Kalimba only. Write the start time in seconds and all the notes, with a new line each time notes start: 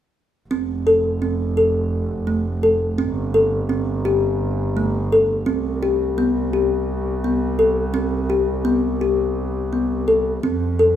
0.51 C4
0.87 A4
1.22 C4
1.57 A4
2.27 A3
2.63 A4
2.98 C4
3.34 A4
3.69 C4
4.05 G4
4.77 A3
5.12 A4
5.46 C4
5.83 G4
6.18 B3
6.53 G4
7.24 B3
7.59 A4
7.94 C4
8.30 G4
8.65 B3
9.01 G4
9.73 B3
10.08 A4
10.43 C4
10.79 A4